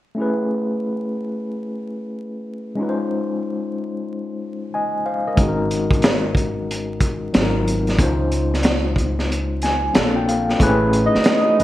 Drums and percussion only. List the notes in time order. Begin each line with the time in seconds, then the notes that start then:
5.37 kick, closed hi-hat
5.71 closed hi-hat
5.91 kick, closed hi-hat
6.02 snare, closed hi-hat
6.35 kick, closed hi-hat
6.71 closed hi-hat
7.00 kick, closed hi-hat
7.34 snare, closed hi-hat
7.67 closed hi-hat
7.87 snare, closed hi-hat
7.99 kick, closed hi-hat
8.32 closed hi-hat
8.54 snare, closed hi-hat
8.63 snare, closed hi-hat
8.96 kick, closed hi-hat
9.19 snare
9.32 closed hi-hat
9.62 snare, closed hi-hat
9.95 snare, closed hi-hat
10.29 closed hi-hat
10.50 snare
10.60 kick, closed hi-hat
10.93 closed hi-hat
11.15 snare
11.24 snare, closed hi-hat
11.60 closed hi-hat